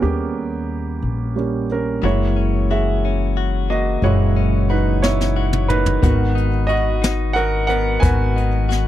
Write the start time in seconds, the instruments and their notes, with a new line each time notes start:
Already playing: grand piano G3 A#3 B3 C#4 G4 G#4 A#4 C#5
0.02 upright bass D#2, grand piano G3 A#3 C#4 G4
1.02 upright bass A#1
1.36 grand piano G3 A#3 C#4
1.71 grand piano C#4 A#4
2.03 upright bass F#1, clean electric guitar E3 F#4, grand piano G#3 A#3 E4 C#5
2.36 clean electric guitar C#4
2.71 clean electric guitar F#4, grand piano G#4 E5
3.05 clean electric guitar C#4
3.37 clean electric guitar F#4
3.70 clean electric guitar A#3, grand piano F#4 D#5
4.02 upright bass F#1, grand piano A#2 G#3 E4 C#5, clean electric guitar E3 F#4
4.37 clean electric guitar C#4
4.70 grand piano D#4 B4, clean electric guitar F#4
5.02 clean electric guitar C#4, grand piano E4 C#5, snare
5.21 snare
5.36 clean electric guitar F#4
5.53 mid tom
5.68 clean electric guitar A#3, grand piano D#4 B4, mid tom
5.86 floor tom
6.02 upright bass G#1, clean electric guitar D#3 F#4, grand piano B3 F#4 A#4, kick, closed hi-hat
6.35 clean electric guitar D#4, closed hi-hat
6.67 grand piano F#4 D#5, clean electric guitar F#4, closed hi-hat
7.02 clean electric guitar D#4, snare, closed hi-hat
7.33 clean electric guitar F#4, grand piano A#4 F#5, closed hi-hat
7.67 clean electric guitar B3, grand piano A#4 F#5, closed hi-hat
8.00 upright bass G#1, clean electric guitar D#3 F#4, grand piano B3 F#4 A#4 B4 G#5, kick, closed hi-hat
8.36 clean electric guitar D#4, closed hi-hat
8.69 clean electric guitar F#4, snare, closed hi-hat